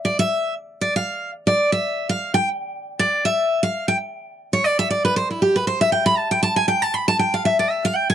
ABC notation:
X:1
M:4/4
L:1/8
Q:"Swing" 1/4=235
K:Ephr
V:1 name="Steel-string acoustic guitar"
d e3 z2 d f- | f2 z d2 e3 | f2 g z4 d- | d e3 f2 g z |
z3 ^c d e d B | c E G B c e g b | a g a ^g =g a b a | g f e d e f g ^g |]